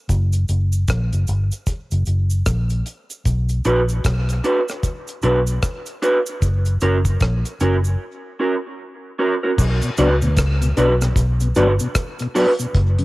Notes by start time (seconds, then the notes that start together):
0.09 F#1, kick, closed hi-hat, cabasa
0.32 closed hi-hat, cabasa
0.48 F#1, closed hi-hat, cabasa
0.72 cabasa
0.88 A#1, kick, cross-stick, closed hi-hat, cabasa
1.13 F#1, closed hi-hat, cabasa
1.27 G1, closed hi-hat, cabasa
1.52 closed hi-hat, cabasa
1.67 kick, closed hi-hat, cabasa
1.91 F#1, closed hi-hat, cabasa
2.06 F#1, closed hi-hat, cabasa
2.30 cabasa
2.46 A#1, kick, cross-stick, closed hi-hat, cabasa
2.69 closed hi-hat, cabasa
2.86 closed hi-hat, cabasa
3.10 closed hi-hat, cabasa
3.25 B1, kick, closed hi-hat, cabasa
3.49 closed hi-hat, cabasa
3.64 A#1 D4 F#4 B4, closed hi-hat, cabasa
3.89 closed hi-hat, cabasa
4.04 B1, kick, cross-stick, closed hi-hat, cabasa
4.29 closed hi-hat, cabasa
4.44 D4 F#4 B4, closed hi-hat, cabasa
4.68 cross-stick, closed hi-hat, cabasa
4.83 kick, closed hi-hat, cabasa
5.07 closed hi-hat, cabasa
5.22 B1 D4 F#4 B4, closed hi-hat, cabasa
5.47 closed hi-hat, cabasa
5.63 kick, cross-stick, closed hi-hat, cabasa
5.86 closed hi-hat, cabasa
6.02 D4 F#4 B4, closed hi-hat, cabasa
6.26 closed hi-hat, cabasa
6.42 F#1, kick, closed hi-hat, cabasa
6.65 closed hi-hat, cabasa
6.81 F#1 C#4 F#4 A#4, closed hi-hat, cabasa
7.05 kick, closed hi-hat, cabasa
7.20 A#1, kick, cross-stick, closed hi-hat, cabasa
7.45 closed hi-hat, cabasa
7.60 F#1 C#4 F#4 A#4, closed hi-hat, cabasa
7.84 cabasa
8.40 C#4 F#4 A#4
9.19 C#4 F#4 A#4
9.43 C#4 F#4 A#4
9.58 B1, kick, crash, cabasa
9.82 B2, closed hi-hat, cabasa
9.97 C#2 F#3 B3 D4 F#4 B4, closed hi-hat, cabasa
10.22 D2 B2, closed hi-hat, cabasa
10.37 C#2, kick, cross-stick, closed hi-hat, cabasa
10.61 B2, closed hi-hat, cabasa
10.77 B1 F#3 B3 D4 F#4 B4, closed hi-hat, cabasa
11.01 B2, cross-stick, cabasa
11.16 B1, kick, closed hi-hat, cabasa
11.40 B2, closed hi-hat, cabasa
11.55 G1 F#3 B3 D4 F#4 B4, closed hi-hat, cabasa
11.79 B2, closed hi-hat, cabasa
11.95 kick, cross-stick, closed hi-hat, cabasa
12.19 B2, closed hi-hat, cabasa
12.35 F#3 B3 D4 F#4 B4, open hi-hat, cabasa
12.59 B2, closed hi-hat, cabasa
12.74 F#1, kick, closed hi-hat
12.99 F#2 C#3, closed hi-hat